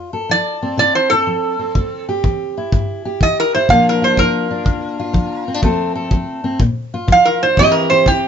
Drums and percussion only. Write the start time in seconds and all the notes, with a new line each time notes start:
1.75 kick
2.24 kick
2.72 kick
3.21 kick
3.69 kick
4.17 kick
4.66 kick
5.14 kick
5.63 kick
6.11 kick
6.60 kick
7.08 kick
7.57 kick
8.06 kick